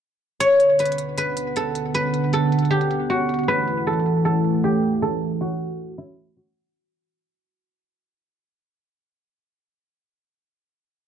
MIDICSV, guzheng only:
0, 0, Header, 1, 2, 480
1, 0, Start_track
1, 0, Key_signature, 2, "minor"
1, 0, Tempo, 384615
1, 507, Time_signature, 4, 2, 24, 8
1, 13815, End_track
2, 0, Start_track
2, 0, Title_t, "Guzheng"
2, 0, Program_c, 0, 107
2, 504, Note_on_c, 0, 73, 107
2, 994, Note_on_c, 0, 71, 73
2, 1466, Note_off_c, 0, 71, 0
2, 1471, Note_on_c, 0, 71, 90
2, 1952, Note_on_c, 0, 69, 76
2, 2425, Note_off_c, 0, 71, 0
2, 2430, Note_on_c, 0, 71, 101
2, 2889, Note_off_c, 0, 73, 0
2, 2908, Note_off_c, 0, 69, 0
2, 2913, Note_on_c, 0, 69, 81
2, 3377, Note_on_c, 0, 67, 79
2, 3866, Note_on_c, 0, 66, 73
2, 3941, Note_off_c, 0, 67, 0
2, 4340, Note_off_c, 0, 71, 0
2, 4345, Note_on_c, 0, 71, 115
2, 4824, Note_off_c, 0, 69, 0
2, 4829, Note_on_c, 0, 69, 75
2, 5299, Note_off_c, 0, 69, 0
2, 5304, Note_on_c, 0, 69, 86
2, 5790, Note_on_c, 0, 67, 79
2, 5864, Note_off_c, 0, 66, 0
2, 6263, Note_off_c, 0, 69, 0
2, 6268, Note_on_c, 0, 69, 102
2, 6748, Note_on_c, 0, 66, 81
2, 6823, Note_off_c, 0, 67, 0
2, 6902, Note_off_c, 0, 71, 0
2, 7463, Note_on_c, 0, 64, 88
2, 7941, Note_off_c, 0, 66, 0
2, 7946, Note_on_c, 0, 66, 82
2, 9009, Note_off_c, 0, 69, 0
2, 10722, Note_off_c, 0, 64, 0
2, 10987, Note_off_c, 0, 66, 0
2, 13815, End_track
0, 0, End_of_file